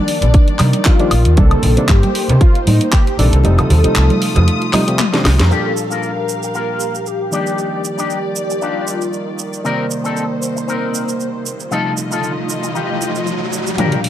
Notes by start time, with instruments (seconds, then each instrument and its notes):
Already playing: reed electric piano D#3 F3 G3 A#3 D4, string section D#3 G3 D5, analog synth lead D4
0.08 open hi-hat
0.22 fingered electric bass A#1, closed hi-hat, low conga
0.34 kick, closed hi-hat
0.48 closed hi-hat
0.59 fingered electric bass C3, analog synth lead D#4, clap, open hi-hat, high conga, high woodblock
0.73 closed hi-hat
0.85 reed electric piano D#3 F3 G3 A#3 D4, analog synth lead F4, kick, clap, closed hi-hat
0.99 reed electric piano D#3 F3 G3 A#3 D4, closed hi-hat
1.11 fingered electric bass A#1, open hi-hat, high woodblock
1.25 fingered electric bass D#2, closed hi-hat
1.37 fingered electric bass C2, reed electric piano C3 D#3 G3 A#3 D4, string section A#3 C5, analog synth lead A4, kick, closed hi-hat, high conga
1.51 closed hi-hat, low conga, high woodblock
1.62 fingered electric bass A#1, open hi-hat, low conga
1.77 reed electric piano C3 D#3 G3 A#3 D4, closed hi-hat
1.89 fingered electric bass G2, analog synth lead G4, kick, clap, closed hi-hat
2.03 closed hi-hat, high conga
2.15 open hi-hat
2.29 fingered electric bass C3, closed hi-hat, low conga
2.41 analog synth lead F4, kick, closed hi-hat
2.55 closed hi-hat
2.67 fingered electric bass A2, analog synth lead D#4, open hi-hat, high conga
2.81 closed hi-hat
2.92 analog synth lead G4, kick, clap, closed hi-hat
3.07 closed hi-hat
3.18 fingered electric bass A#1, reed electric piano C3 D#3 G3 A#3 D4, analog synth lead A4, open hi-hat
3.33 fingered electric bass C2, closed hi-hat
3.44 fingered electric bass F1, reed electric piano C3 F3 G3 A3 D#4, string section A3 F4 D#6, analog synth lead A4, closed hi-hat, high conga
3.58 closed hi-hat, low conga, high woodblock
3.70 fingered electric bass D#2, open hi-hat, low conga
3.83 reed electric piano C3 F3 G3 A3 D#4, muted fingered electric bass stroke, closed hi-hat
3.96 fingered electric bass C2, clap, closed hi-hat
4.10 closed hi-hat, high conga
4.22 open hi-hat
4.36 fingered electric bass F2, closed hi-hat, low conga
4.48 closed hi-hat
4.62 closed hi-hat
4.73 reed electric piano C3 F3 G3 A3 D#4, clap, open hi-hat, high conga, high woodblock
4.87 reed electric piano C3 F3 G3 A3 G4, closed hi-hat
4.99 clap, closed hi-hat, high tom
5.13 reed electric piano C3 F3 G3 A3 D4, snare, closed hi-hat
5.25 fingered electric bass C2, snare, open hi-hat, high woodblock
5.39 fingered electric bass F2, snare, closed hi-hat
5.45 analog synth lead A#4
5.50 reed electric piano A#2 F3 G3 D4, clean electric guitar A#3 F4 G4, string section G4 F5, analog synth lead A4, shaker
5.77 shaker
5.90 clean electric guitar A#3 F4 A#4, shaker
6.03 analog synth lead A#4, shaker
6.28 muted clean electric guitar stroke, shaker
6.42 muted clean electric guitar stroke, shaker
6.54 clean electric guitar A#3 F4 A#4, shaker
6.80 shaker
6.95 shaker
7.06 analog synth lead G4, shaker
7.31 reed electric piano D#3 F3 G3 A#3 D5, string section D#3 G3 D5, clean electric guitar D4 D#4 G4, shaker
7.47 shaker
7.58 shaker
7.85 shaker
7.98 clean electric guitar D4 D#4 G4, shaker
8.10 shaker
8.36 muted clean electric guitar stroke, shaker
8.50 muted clean electric guitar stroke, shaker
8.62 clean electric guitar D4 D#4 G4, analog synth lead F4, shaker
8.87 shaker
9.01 shaker
9.13 shaker
9.39 muted clean electric guitar stroke, shaker
9.53 shaker
9.64 reed electric piano C3 D#3 G3 A#3 D5, string section A#3 C5, clean electric guitar C4 D#4 A#4, riser, shaker
9.91 shaker
10.04 clean electric guitar C4 D#4 A4, shaker
10.17 shaker
10.42 muted clean electric guitar stroke, shaker
10.56 muted clean electric guitar stroke, shaker
10.68 clean electric guitar C4 D#4 A#4, shaker
10.94 shaker
11.08 shaker
11.20 shaker
11.45 muted clean electric guitar stroke, shaker
11.60 shaker
11.71 reed electric piano C3 F3 G3 A3 D#4, string section A3 F4 D#5, clean electric guitar D#4 F4 A4, shaker
11.97 shaker
12.11 clean electric guitar D#4 F4 A4, shaker
12.23 shaker
12.49 muted clean electric guitar stroke, shaker
12.63 muted clean electric guitar stroke, shaker
12.75 clean electric guitar D#4 F4 G4, shaker
13.01 shaker
13.15 shaker
13.27 shaker
13.52 muted clean electric guitar stroke, shaker
13.67 shaker
13.78 fingered electric bass G1, reed electric piano A#2 F3 G3 D4, string section A#3 G4 F5, clean electric guitar F4 G4 A#4, closed hi-hat, mid tom, riser
13.92 closed hi-hat
14.04 fingered electric bass F1, open hi-hat